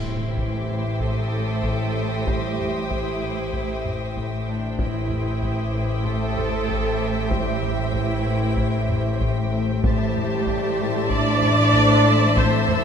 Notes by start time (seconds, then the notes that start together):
Already playing: A1 A2 E3 E4 G4 C5 E5 G5 C6, impact
0.08 A2
0.37 A2 D6, taiko
0.71 A2
1.00 A2 A3 A4 D#6, taiko
1.34 A2
1.63 A2, taiko
1.96 A3
2.26 A2 G3 G4, taiko
2.59 A2, taiko low-mid
2.90 A2 E3 E4, taiko
3.22 A2
3.53 A2, taiko
3.85 A2, taiko low-mid
4.16 A2, taiko
4.47 D3 A3 D4
4.78 A1 A2 E3 E4 G4 C5 E5 G5 C6 D#6, taiko
5.11 A2, taiko low-mid
5.42 A2 D6, taiko
5.74 A2
6.05 A2 A3 A4, taiko
6.37 A2, taiko low-mid
6.69 A2, taiko
7.00 A3
7.30 A2 G3 G4, taiko
7.39 E6
7.63 A2, taiko low-mid
7.93 A2 E3 E4, taiko
8.25 A2
8.57 A2, taiko
8.89 A2, taiko low-mid
9.21 A2, taiko
9.53 A3
9.83 A1 A2 G3 G4 A4 C5 E5 A5 C6, taiko
10.15 A2, taiko low-mid
10.47 A2, taiko
10.80 A2
11.09 A2 D4 D5 E6, taiko
11.41 A2, taiko low-mid
11.73 A2, taiko
12.06 A3
12.37 A2 C4 C5, taiko
12.68 A2 A3 A4, taiko low-mid